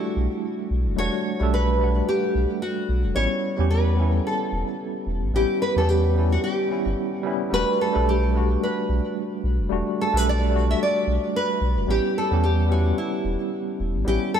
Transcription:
0.00 0.96 G3 medium
0.00 0.97 A3 medium
0.00 0.98 D4 medium
0.00 0.67 E4 medium
0.00 1.00 F#4 medium
0.00 1.43 A4 loud
0.16 0.28 B1 medium
0.71 0.88 B1 medium
0.87 0.95 E1 medium
0.96 1.09 E1 medium
0.96 1.36 G3 medium
0.96 1.37 A3 medium
0.96 1.37 D4 medium
0.96 1.38 F#4 medium
0.96 1.53 C#5 loud
1.40 2.02 B1 loud
1.40 1.76 G3 medium
1.40 1.77 A3 medium
1.40 1.78 D4 medium
1.40 1.78 A4 medium
1.54 2.04 B4 loud
1.77 3.12 G3 medium
1.77 3.13 A3 medium
1.81 3.14 D4 medium
1.81 3.15 F#5 medium
2.09 2.62 G4 medium
2.35 2.46 B1 medium
2.62 3.02 F#4 medium
2.89 3.05 B1 medium
3.04 3.13 E1 medium
3.14 3.27 A1 medium
3.14 3.54 G3 medium
3.14 3.55 B3 medium
3.14 3.56 C#4 medium
3.14 3.56 E4 loud
3.14 3.70 C#5 loud
3.57 4.20 E2 loud
3.57 3.94 G3 medium
3.57 3.95 B3 medium
3.57 3.96 C#4 medium
3.57 3.96 G4 loud
3.70 4.14 B4 medium
3.95 5.30 G3 medium
3.95 5.31 B3 medium
3.99 5.32 C#4 medium
3.99 5.33 E4 medium
4.14 4.26 A4 medium
4.27 5.04 A4 medium
4.52 4.64 E1 medium
5.07 5.24 E1 medium
5.22 5.31 A1 medium
5.33 5.45 A1 medium
5.33 5.73 G3 medium
5.33 5.74 B3 medium
5.33 5.74 C#4 medium
5.33 5.75 E4 loud
5.33 5.60 G4 loud
5.62 5.77 B4 loud
5.76 6.38 E2 loud
5.76 6.13 G3 medium
5.76 6.13 B3 medium
5.76 6.14 C#4 medium
5.76 5.89 A4 medium
5.80 6.15 G4 loud
5.89 6.32 G4 loud
6.15 6.68 G3 medium
6.15 6.69 B3 medium
6.15 6.69 C#4 medium
6.15 6.70 E4 medium
6.32 6.43 F#4 medium
6.44 7.21 G4 medium
6.69 7.22 G3 medium
6.69 7.22 B3 medium
6.69 7.23 C#4 medium
6.69 7.23 E4 medium
6.86 6.95 G1 medium
7.23 7.49 G3 loud
7.23 7.49 B3 medium
7.23 7.50 C#4 medium
7.23 7.51 E4 loud
7.50 7.64 E1 medium
7.50 7.90 G3 medium
7.50 7.91 A3 medium
7.50 7.92 D4 medium
7.50 7.92 F#4 loud
7.50 7.81 B4 loud
7.81 8.09 A4 medium
7.93 8.57 B1 loud
7.93 8.29 G3 medium
7.93 8.31 A3 medium
7.93 8.31 D4 medium
7.93 8.32 A4 loud
8.09 8.59 G4 medium
8.31 9.66 G3 medium
8.31 9.67 A3 medium
8.35 9.68 D4 medium
8.35 9.69 F#4 medium
8.63 9.40 B4 medium
8.89 9.00 B1 loud
9.44 9.60 B1 medium
9.59 9.67 E1 medium
9.69 9.82 E1 loud
9.69 10.09 G3 medium
9.69 10.10 A3 medium
9.69 10.10 D4 medium
9.69 10.11 F#4 loud
10.01 10.17 A4 medium
10.12 10.75 B1 loud
10.12 10.48 G3 medium
10.12 10.49 A3 medium
10.12 10.50 D4 medium
10.12 10.51 A4 loud
10.17 10.27 B4 medium
10.29 10.67 D5 loud
10.49 11.84 G3 medium
10.49 11.85 A3 medium
10.54 11.87 D4 medium
10.54 11.88 F#4 medium
10.71 10.81 E5 loud
10.83 11.32 D5 loud
11.07 11.18 B1 medium
11.36 11.75 B4 loud
11.61 11.78 B1 medium
11.76 11.85 E1 medium
11.88 12.00 A1 loud
11.88 12.28 G3 medium
11.88 12.28 B3 medium
11.88 12.29 C#4 medium
11.88 12.29 E4 medium
11.88 12.18 G4 loud
12.18 12.45 A4 medium
12.31 12.93 E2 loud
12.31 12.65 G3 medium
12.31 12.68 B3 medium
12.31 12.68 C#4 medium
12.31 12.69 G4 loud
12.44 12.71 G4 loud
12.66 14.02 G3 medium
12.66 14.03 B3 medium
12.71 14.04 C#4 medium
12.71 14.06 E4 medium
12.71 12.98 F#4 medium
12.98 13.76 E4 medium
13.25 13.36 E1 loud
13.80 13.97 E1 medium
13.95 14.04 A1 medium
14.05 14.18 A1 medium
14.05 14.40 G3 medium
14.05 14.40 B3 medium
14.05 14.40 C#4 medium
14.05 14.40 E4 loud
14.05 14.34 G4 loud
14.34 14.40 A4 loud

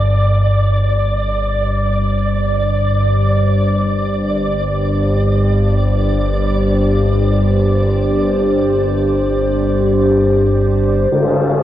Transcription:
0.00 11.11 G1 medium
0.00 11.12 G2 medium
0.00 11.63 D4 medium
0.00 11.63 G4 medium
0.00 11.63 C5 medium
0.00 11.14 D5 medium
11.12 11.63 G1 medium
11.12 11.63 G2 medium
11.12 tam-tam medium

